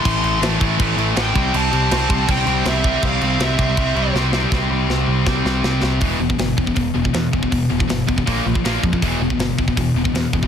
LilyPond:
<<
  \new Staff \with { instrumentName = "Lead electric guitar" } { \time 4/4 \key e \phrygian \tempo 4 = 160 c'''4 r2 g''4 | a''2 g''4 e''4 | f''4 e''2 r4 | r1 |
r1 | r1 | r1 | }
  \new Staff \with { instrumentName = "Distorted electric guitar" } { \clef bass \time 4/4 \key e \phrygian <a, e a>8 <a, e a>8 <a, e a>8 <a, e a>8 <a, e a>8 <a, e a>8 <a, e a>8 <c g c'>8 | <c g c'>8 <c g c'>8 <c g c'>8 <c g c'>8 <c g c'>8 <c g c'>8 <c g c'>8 <c g c'>8 | <c g c'>8 <c g c'>8 <c g c'>8 <c g c'>8 <c g c'>8 <c g c'>8 <c g c'>8 <c g c'>8 | <c g c'>1 |
<e, b, e>8 <e, b,>16 <e, b,>16 <e, b,>8 <e, b,>16 <e, b,>16 <e, b,>8 <e, b,>16 <e, b,>16 <e, b,>8 <e, b,>16 <e, b,>16 | <e, b,>8 <e, b,>16 <e, b,>16 <e, b,>8 <e, b,>16 <e, b,>16 <ais, eis ais>8 <ais, eis>16 <ais, eis>16 <ais, eis ais>8 <ais, eis>16 <ais, eis>16 | <e, b, e>8 <e, b,>16 <e, b,>16 <e, b,>8 <e, b,>16 <e, b,>16 <e, b,>8 <e, b,>16 <e, b,>16 <e, b,>8 <e, b,>16 <e, b,>16 | }
  \new Staff \with { instrumentName = "Distorted electric guitar" } { \clef bass \time 4/4 \key e \phrygian <a, e a>8 <a, e a>8 <a, e a>8 <a, e a>8 <a, e a>8 <a, e a>8 <a, e a>8 <c g c'>8 | <c g c'>8 <c g c'>8 <c g c'>8 <c g c'>8 <c g c'>8 <c g c'>8 <c g c'>8 <c g c'>8 | <c g c'>8 <c g c'>8 <c g c'>8 <c g c'>8 <c g c'>8 <c g c'>8 <c g c'>8 <c g c'>8 | <c g c'>2 <c g c'>2 |
<e, b, e>8 <e, b,>16 <e, b,>16 <e, b,>8 <e, b,>16 <e, b,>16 <e, b,>8 <e, b,>16 <e, b,>16 <e, b,>8 <e, b,>16 <e, b,>16 | <e, b,>8 <e, b,>16 <e, b,>16 <e, b,>8 <e, b,>16 <e, b,>16 <ais, eis ais>8 <ais, eis>16 <ais, eis>16 <ais, eis ais>8 <ais, eis>16 <ais, eis>16 | <e, b, e>8 <e, b,>16 <e, b,>16 <e, b,>8 <e, b,>16 <e, b,>16 <e, b,>8 <e, b,>16 <e, b,>16 <e, b,>8 <e, b,>16 <e, b,>16 | }
  \new Staff \with { instrumentName = "Picked electric bass" } { \clef bass \time 4/4 \key e \phrygian a,,8 a,,8 a,,8 a,,8 a,,8 a,,8 a,,8 c,8 | c,8 c,8 c,8 c,8 c,8 c,8 c,4 | c,8 c,8 c,8 c,8 c,8 c,8 c,4 | c,8 c,8 c,8 c,8 r8 c,8 c,8 c,8 |
e,,8 e,,8 g,,8 e,,8 e,,8 e,,8 e,8 e,,8 | e,,8 e,,8 g,,8 e,,8 ais,,8 ais,,8 ais,,8 eis,8 | e,,8 e,,8 g,,8 e,,8 e,,8 e,,8 e,8 e,,8 | }
  \new DrumStaff \with { instrumentName = "Drums" } \drummode { \time 4/4 <cymc bd>8 cymc8 <cymc sn>8 <cymc bd>8 <cymc bd>8 cymc8 <cymc sn>8 <cymc bd>8 | cymc8 cymc8 <cymc sn>8 <cymc bd>8 <cymc bd>8 cymc8 <cymc sn>8 <cymc bd>8 | <cymc bd>8 cymc8 <cymc sn>8 <cymc bd>8 <cymc bd>8 cymc8 sn8 sn8 | <bd sn>4 sn4 <bd sn>8 sn8 sn8 sn8 |
<hho bd>8. bd16 <hho sn>8 bd16 bd16 <hho bd>8. bd16 <hho sn>8 bd16 bd16 | <hho bd>8. bd16 <hho sn>8 bd16 bd16 <hho bd>8. bd16 <hho sn>8 bd16 bd16 | <hho bd>8. bd16 <hho sn>8 bd16 bd16 <hho bd>8. bd16 <hho sn>8 bd16 bd16 | }
>>